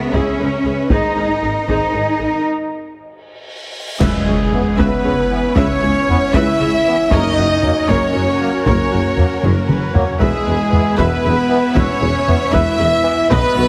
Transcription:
Already playing: B3 G#4 A#4 E5
0.12 C#2 C#4 E4 G#4, taiko
0.39 C#2 G#4 A#4 B4
0.64 C#2 G#4 B4
0.90 G#1 D#4 G#4 A#4 C5 D#5, taiko
1.16 G#1 G#4 A#4
1.42 G#1 G#4 A#4
1.67 G#1 D#4 G#4 C5, taiko
1.93 G#1 G#4 A#4
2.19 G#1 G#4 A#4
2.45 cymbal swell
3.99 C#2 C#3 G#3 C#4 E4 G#4 B4 C#5 E5, concert bass drum, taiko, crash, impact
4.26 C#2 C#3 G#4 C#5
4.52 E3 B3, taiko low
4.77 C#2 C#3 B3 B4 E5, taiko
5.04 C#2 C#3 G#4 C#5
5.32 E3 B3
5.55 C#2 C#3 C#4 B4 C#5 E5, taiko
5.82 C#2 C#3 G#4 C#5
6.09 E3 B3, taiko low
6.33 C#2 C#3 E4 B4 E5, taiko
6.59 C#2 C#3 G#4 C#5
6.87 E3 B3
7.11 F#1 F#2 D#4 F#4 A#4 C#5 D#5, taiko
7.37 F#1 F#2 F#4 A#4
7.63 F#3 A#3, taiko low
7.88 F#1 F#2 C#4 A#4 C#5, taiko
8.14 F#1 F#2 F#4 A#4
8.40 F#3 A#3
8.65 F#1 F#2 C#4 A#4 C#5, taiko
8.91 F#1 F#2 F#4 A#4
9.17 F#3 A#3, taiko low
9.43 F#1 F#2 A#4, taiko mid
9.69 F#1 F#2 B4, taiko mid
9.94 F#3 A#3 C#5, taiko low
10.20 E1 E2 G#3 B3 E4 G#4 B4 E5, taiko
10.45 E1 E2 G#4 B4
10.71 E3 B3, taiko low
10.97 E1 E2 B3 B4 E5, taiko
11.24 E1 E2 G#4 B4
11.49 E3 B3
11.75 E1 E2 C#4 B4 C#5 E5, taiko
12.00 E1 E2 G#4 B4
12.27 E3 B3, taiko low
12.52 E1 E2 E4 B4 E5, taiko
12.79 E1 E2 G#4 B4
13.04 E3 B3
13.30 B1 B2 B3 F#4 B4 D#5, taiko
13.57 B1 B2 F#4 B4

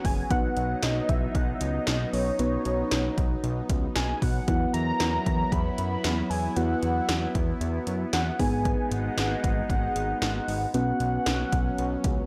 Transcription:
Already playing: F#3 B3 C#4 F#4 B4
0.05 F#1 G#5, kick, open hi-hat
0.31 B1 B3 D#4 F#4 B4 F#5, kick, closed hi-hat
0.57 B1 F#5, closed hi-hat
0.83 B1 D#5, snare, closed hi-hat
1.09 B1 E5, kick, closed hi-hat
1.35 B1 F#5, kick, closed hi-hat
1.54 E5
1.61 C#2 D#5, closed hi-hat
1.87 B1, snare, closed hi-hat
2.13 B1 C#5, open hi-hat
2.39 B1 B3 D#4 F#4 B4, closed hi-hat
2.65 B1, closed hi-hat
2.91 B1, snare, closed hi-hat
3.18 B1, kick, closed hi-hat
3.44 B1, closed hi-hat
3.69 C#2, kick, closed hi-hat
3.96 B1 G#5, snare, closed hi-hat
4.22 B1 F#5, kick, open hi-hat
4.47 E2 F#3 B3 E4 F#4 B4, kick, closed hi-hat
4.74 E2 A#5, closed hi-hat
5.00 E2, snare, closed hi-hat
5.26 E2, kick, closed hi-hat
5.52 E2 B5, kick, closed hi-hat
5.78 F#2 B5, closed hi-hat
6.04 E2, snare, closed hi-hat
6.30 E2 G#5, open hi-hat
6.56 E2 B3 E4 F#4 B4 F#5, closed hi-hat
6.83 E2, closed hi-hat
7.09 E2, snare, closed hi-hat
7.35 E2, kick, closed hi-hat
7.61 E2, closed hi-hat
7.87 F#2, closed hi-hat
8.13 E2 F#5, snare, closed hi-hat
8.39 G#1 G#3 B3 D#4 G#4 B4 G#5, kick, open hi-hat
8.65 kick, closed hi-hat
8.91 G#1 F#5, closed hi-hat
9.17 G#1, snare, closed hi-hat
9.44 G#1, kick, closed hi-hat
9.70 G#1 F#5, kick, closed hi-hat
9.96 G#1, closed hi-hat
10.22 G#1 F#5, snare, closed hi-hat
10.48 G#1, open hi-hat
10.74 B1 F#3 B3 C#4 F#4 B4 F#5, closed hi-hat
11.00 B1, closed hi-hat
11.26 B1, snare, closed hi-hat
11.52 B1, kick, closed hi-hat
11.78 B1, closed hi-hat
12.04 C#2, kick, closed hi-hat

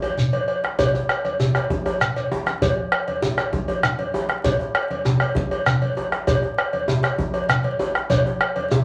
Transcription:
0.02 cowbell, djembe tone
0.18 djembe slap, high conga, low conga, shekere
0.33 cowbell, high conga
0.48 cowbell
0.63 bombo rim, djembe slap, high conga
0.79 bombo low, cowbell, high conga, low conga, djembe bass, shekere
0.94 high conga, djembe tone, shekere
1.09 bombo rim, cowbell, djembe slap, shekere
1.25 bombo rim, cowbell, high conga, shekere
1.40 djembe tone, low conga, shekere
1.55 bombo rim, cowbell, djembe slap, high conga, shekere
1.70 bombo low, djembe slap, high conga, djembe bass
1.86 bombo rim, cowbell, djembe tone
2.01 bombo rim, low conga, shekere
2.16 bombo rim, cowbell, djembe slap, low conga, shekere
2.31 bombo rim, high conga, djembe tone
2.46 bombo rim, djembe slap, high conga, shekere
2.62 bombo low, cowbell, high conga, djembe bass, low conga, shekere
2.92 bombo rim, cowbell
3.08 cowbell, high conga
3.22 bombo rim, djembe tone, low conga, shekere
3.38 bombo rim, cowbell, djembe slap, shekere
3.53 bombo low, djembe slap, high conga, djembe bass
3.68 cowbell, djembe tone
3.83 bombo rim, djembe slap, high conga, low conga, shekere
3.99 cowbell, high conga
4.14 cowbell, djembe tone
4.29 bombo rim, djembe slap, high conga
4.44 bombo low, cowbell, high conga, djembe bass, low conga, shekere
4.59 djembe tone
4.75 bombo rim, cowbell
4.90 cowbell, high conga
5.05 bombo rim, djembe tone, low conga, shekere
5.20 bombo rim, cowbell, shekere
5.35 bombo low, djembe slap, high conga, djembe bass
5.51 cowbell, djembe tone
5.66 bombo rim, djembe slap, high conga, low conga, shekere
5.82 cowbell, high conga
5.97 cowbell, djembe tone
6.12 bombo rim, djembe slap, high conga
6.27 bombo low, cowbell, high conga, djembe bass, low conga, shekere
6.42 djembe tone
6.58 bombo rim, cowbell
6.73 cowbell, high conga
6.88 bombo rim, djembe tone, low conga, shekere
7.03 bombo rim, cowbell, djembe slap, shekere
7.18 bombo low, djembe slap, high conga, djembe bass
7.34 cowbell, djembe tone
7.49 bombo rim, djembe slap, high conga, low conga, shekere
7.64 cowbell, high conga
7.79 cowbell, djembe tone
7.95 bombo rim, djembe slap, high conga
8.10 bombo low, cowbell, djembe slap, high conga, low conga, djembe bass, shekere
8.26 djembe tone
8.41 bombo rim, cowbell
8.56 bombo rim, cowbell, high conga
8.71 bombo rim, djembe slap, high conga, djembe tone, low conga, shekere

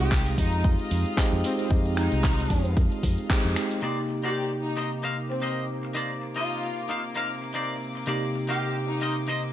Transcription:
Already playing: G#3 C4 D#4 F4 G4 D#5 F5
0.00 C2 G4
0.11 kick, clap, closed hi-hat
0.26 open hi-hat
0.38 F2 D#4, kick, open hi-hat
0.53 closed hi-hat
0.64 kick, closed hi-hat
0.79 closed hi-hat
0.91 F2, open hi-hat
1.06 closed hi-hat
1.17 G#3 C4 D#4 G4, kick, clap, closed hi-hat
1.33 F2
1.44 C4, open hi-hat
1.58 C4, closed hi-hat
1.69 F2 G#3 C4 D#4 G4, kick, closed hi-hat
1.85 closed hi-hat
1.97 D#4, finger snap, open hi-hat
2.12 C2, closed hi-hat
2.24 kick, clap, closed hi-hat
2.38 open hi-hat
2.50 F2, kick, open hi-hat
2.65 closed hi-hat
2.77 kick, closed hi-hat
2.92 closed hi-hat
3.03 F2, kick, open hi-hat
3.18 closed hi-hat
3.29 G#3 C4 D#4 G4, kick, clap, open hi-hat
3.45 F2, closed hi-hat
3.56 finger snap, open hi-hat
3.71 closed hi-hat
3.82 C3 A#3 D#4 G4 A#4 C5 D5 D6
4.09 muted clean electric guitar stroke
4.24 D#4 G4 A#4 C5 D5
4.62 D#4
4.77 D#4 A#4 C5 D#5
5.03 D#4 A#4 C5 F5
5.30 C4, muted clean electric guitar stroke
5.42 D#4 A#4 C5 D#5
5.83 muted clean electric guitar stroke
5.95 D#4 A#4 C5 D5
6.21 muted clean electric guitar stroke
6.36 D#4 F4 A#4 C5 D#5
6.89 D#4 A#4 C5 F5
7.15 D#4 A#4 C5 F5
7.42 muted clean electric guitar stroke
7.54 D#4 A#4 C5 D5
7.95 muted clean electric guitar stroke
8.07 C3 A#3 D#4 G4 A#4 C5 D5
8.34 muted clean electric guitar stroke
8.48 D#4 G4 A#4 C5 F5
8.87 D#4
9.01 D#4 A#4 C5 D#5
9.28 D#4 A#4 C5 D#5

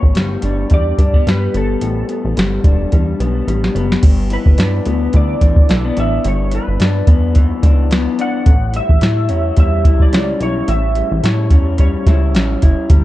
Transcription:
Already playing: A2 D3 B3 E4 C#5
0.03 A1, kick
0.15 G1 G3, snare, closed hi-hat
0.42 G1 D4, closed hi-hat
0.70 E2 G3, kick, closed hi-hat
0.74 D5
0.98 G2 A3, kick, closed hi-hat
1.14 B3, kick
1.27 G2 G3 B4, snare, closed hi-hat
1.54 G1 B3 A4, closed hi-hat
1.81 A1 A2, closed hi-hat
2.09 B3, closed hi-hat
2.25 A1
2.37 G1 G3, snare, closed hi-hat
2.64 E1 D4, kick, closed hi-hat
2.92 E2 G3, kick, closed hi-hat
3.20 B1 B3, closed hi-hat
3.47 A1 G3, closed hi-hat
3.64 snare
3.75 F#1 B3, closed hi-hat
3.92 snare
4.03 G1 G2, kick, closed hi-hat, crash
4.30 E3 B4, closed hi-hat
4.46 G1, kick
4.58 G2 D4, snare, closed hi-hat
4.86 D2 B3, closed hi-hat
5.13 D2 E3 D5, kick, closed hi-hat
5.41 A1 D4, kick, closed hi-hat
5.56 kick
5.69 B1 A3, snare, closed hi-hat
5.85 B3
5.97 A1 D4 E5, closed hi-hat
6.24 G1 G2 C#5, closed hi-hat
6.51 E3 B4, closed hi-hat
6.68 G1
6.80 G2 D4, snare, closed hi-hat
7.07 E2 B3, kick, closed hi-hat
7.35 E3, kick, closed hi-hat
7.63 C#2 D4, kick, closed hi-hat
7.91 B3, snare, closed hi-hat
8.19 D4 F#5, closed hi-hat
8.46 A1 A2, kick, closed hi-hat
8.74 G3 E5, closed hi-hat
8.89 A1, kick
9.01 A2 E4, snare, closed hi-hat
9.29 E2 C#4, closed hi-hat
9.57 E2 G3 E5, kick, closed hi-hat
9.84 B1 E4, kick, closed hi-hat
10.00 D5, kick
10.12 C#2 C#4, snare, closed hi-hat
10.40 B1 E4 C#5, closed hi-hat
10.68 A1 A2 E5, closed hi-hat
10.95 G3, closed hi-hat
11.11 A1
11.24 A2 E4 C#5, snare, closed hi-hat
11.50 E2 C#4, kick, closed hi-hat
11.78 G3 C#5, kick, closed hi-hat
12.07 C#2 E4, kick, snare, closed hi-hat
12.34 A1 C#4, snare, closed hi-hat
12.62 F#1 E4, kick, closed hi-hat
12.90 G1 G3, kick, closed hi-hat

